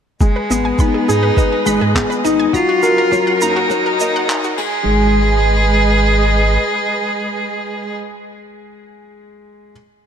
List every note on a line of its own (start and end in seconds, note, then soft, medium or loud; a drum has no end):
0.20 2.54 G#3 medium
0.20 0.49 G#3 medium
0.20 0.82 G#3 medium
0.20 0.33 G#4 medium
0.20 kick medium
0.20 shaker soft
0.36 0.48 B4 medium
0.50 0.72 G#1 medium
0.50 0.67 B3 medium
0.50 3.01 G#4 medium
0.50 0.59 D#5 medium
0.50 shaker medium
0.63 3.00 D#5 medium
0.63 0.70 G#5 medium
0.69 2.53 B4 medium
0.79 1.11 B3 medium
0.79 1.07 D#4 medium
0.79 0.85 B5 medium
0.79 kick medium
0.79 shaker medium
0.94 1.02 G#4 medium
1.08 1.31 G#2 medium
1.08 1.68 D#4 medium
1.08 1.25 G#4 medium
1.08 1.21 G#4 medium
1.08 shaker medium
1.23 1.35 B4 medium
1.37 1.54 B4 medium
1.37 1.46 D#5 medium
1.37 kick loud
1.37 shaker medium
1.52 1.57 G#5 medium
1.66 1.78 G#1 medium
1.66 1.94 G#3 medium
1.66 1.72 B5 loud
1.66 shaker medium
1.81 2.03 G#2 medium
1.81 1.89 G#4 medium
1.95 2.24 B3 medium
1.95 2.08 G#4 medium
1.95 kick loud
1.95 clap medium
1.95 shaker soft
2.10 2.22 B4 medium
2.10 shaker soft
2.24 2.47 G#1 medium
2.24 2.53 D#4 loud
2.24 2.33 D#5 medium
2.24 shaker medium
2.39 2.44 G#5 medium
2.52 3.70 F#3 medium
2.52 3.44 F4 loud
2.52 2.82 F#4 medium
2.52 2.59 A#5 loud
2.52 kick loud
2.52 shaker medium
2.65 2.77 F#4 medium
2.65 4.58 A#4 medium
2.81 3.05 F#1 medium
2.81 4.17 C#4 medium
2.81 2.96 F#4 medium
2.81 3.11 A#4 loud
2.81 shaker medium
2.98 3.10 A#4 medium
3.06 4.58 A#5 medium
3.12 3.40 F#3 medium
3.12 3.20 C#5 medium
3.12 kick loud
3.12 shaker medium
3.27 3.32 F#5 medium
3.41 3.64 F#2 loud
3.41 3.58 A#3 medium
3.41 4.58 D#4 loud
3.41 3.47 A#5 loud
3.41 shaker medium
3.56 3.64 F#4 medium
3.69 4.57 D#3 medium
3.69 3.98 F#3 medium
3.69 3.83 F#4 medium
3.69 kick loud
3.69 shaker medium
3.82 4.58 D#4 medium
3.86 3.98 A#4 medium
4.00 4.11 D#1 medium
4.00 4.17 A#3 medium
4.00 4.09 D#5 medium
4.00 shaker medium
4.14 4.37 D#2 medium
4.14 4.20 F#5 medium
4.28 4.57 D#4 medium
4.28 4.34 A#5 loud
4.28 kick loud
4.28 clap medium
4.28 shaker medium
4.44 4.52 F#4 medium
4.44 shaker soft
4.58 6.58 G#1 medium
4.58 7.96 G#3 medium
4.58 5.13 G#3 loud
4.58 7.97 G#4 medium
4.58 5.13 G#4 medium
4.58 kick loud
4.58 crash medium
4.68 7.97 G#4 medium
5.06 7.97 B4 medium
5.14 7.97 D#5 medium